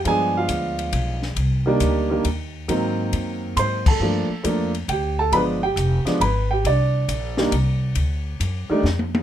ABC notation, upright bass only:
X:1
M:3/4
L:1/8
Q:"Swing" 1/4=136
K:Gm
V:1 name="Upright bass" clef=bass
G,,2 D,,2 =B,,,2 | C,,2 D,,2 E,,2 | _A,,2 _G,,2 A,,2 | G,, z F,,2 D,,2 |
G,,,2 F,,, z _A,,,2 | C,,2 B,,,2 C,,2 | D,,2 ^F,, z =F,,2 |]